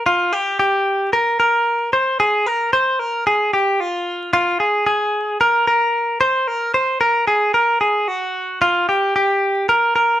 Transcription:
clean electric guitar
0.06 F4
0.33 G4
0.59 G4
1.13 A#4
1.40 A#4
1.93 C5
2.20 G#4
2.46 A#4
2.73 C5
2.99 A#4
3.27 G#4
3.53 G4
3.80 F4
4.33 F4
4.60 G#4
4.86 G#4
5.41 A#4
5.67 A#4
6.21 C5
6.47 A#4
6.74 C5
7.01 A#4
7.27 G#4
7.54 A#4
7.81 G#4
8.08 F#4
8.61 F4
8.89 G4
9.16 G4
9.69 A#4
9.96 A#4

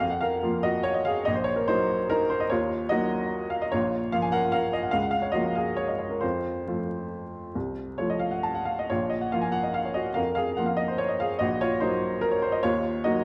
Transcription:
upright piano
0.00 F2 F5
0.10 F#5
0.21 A#4 F5
0.43 F3 A#3 F4
0.63 F#4 D#5
0.83 C#5
0.94 D#5
1.05 G#4 F5
1.25 A#1 D#5
1.34 C5
1.44 C#5
1.56 A#4
1.68 F#3 A#3 D#4 C5
2.10 D#4 A#4
2.30 C5
2.40 D#5
2.50 D#2 F4 C#5
2.89 F#3 A#3 D#4 F#4 D#5
3.50 F5
3.62 D#5
3.72 A#1 F4 C#5
4.12 F3 A#3 F4 F5
4.22 G#5
4.32 A#4 F#5
4.52 A#4 F5
4.73 D#5
4.83 F#5
4.91 C#2 F5
5.02 F#5
5.11 F5
5.22 C#5
5.32 F3 A#3 F4 F#4 D#5
5.55 G#4 F5
5.76 C#5
5.88 D#5
5.98 C#5
6.10 A#4
6.21 F2 F4 C5
6.67 F3 A3 F4
7.55 C2
7.98 F3 A3 F4 C#5
8.10 D#5
8.19 F5
8.31 F#5
8.43 A5
8.55 F#5
8.65 F5
8.79 D#5
8.90 A#1 F4 C#5
9.10 D#5
9.21 F#5
9.32 F3 A#3 F4 F5
9.42 G#5
9.52 F#5
9.63 D#5
9.74 F5
9.85 C#5
9.94 F#4 D#5
10.14 F2 A#4 F5
10.35 G#4 F5
10.57 F3 A#3 F4 F#5
10.66 F5
10.77 D#5
10.88 C5
10.98 C#5
11.09 D#5
11.20 G#4 F5
11.39 A#1 F#4 D#5
11.61 F4 C#5
11.80 F#3 A#3 D#4 C5
12.21 A#4
12.31 C#5
12.42 C5
12.52 D#5
12.63 D#2 F4 C#5
13.04 F#3 A#3 D#4 F#4 D#5

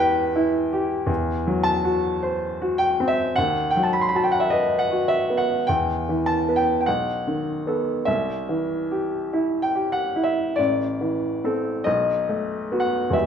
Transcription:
grand piano
Already playing: E2 E3 G4 G5 A5
0.00 B4
0.36 E4
0.73 G4
1.06 E2
1.47 F#3
1.63 A5
1.85 F#4
2.23 C5
2.62 F#4
2.78 G5
3.00 C4
3.08 E5
3.36 D#2 F#5
3.71 G5
3.77 F#3
3.83 A5
3.93 B5
4.01 C6
4.09 B5
4.14 F#4 A5
4.24 G5
4.32 F#5
4.40 E5
4.50 B4 D#5
4.79 F#5
4.91 F#4
5.08 E5
5.30 B3
5.38 F#5
5.67 E2 G5
6.09 E3
6.26 A5
6.48 B3 B4
6.56 G5
6.81 G5
6.86 B1 F#5
7.27 D#3
7.67 B3 A4
8.05 C2 E5
8.49 E3
8.91 G4
9.33 E4
9.62 G5
9.75 G4
9.92 F#5
10.16 E4
10.23 E5
10.56 A1 D5
11.01 E3
11.44 C4 A4
11.84 B1 D#5
12.29 A3
12.72 B3 F#4
12.80 F#5
13.10 E2 G3 B3 G4 E5

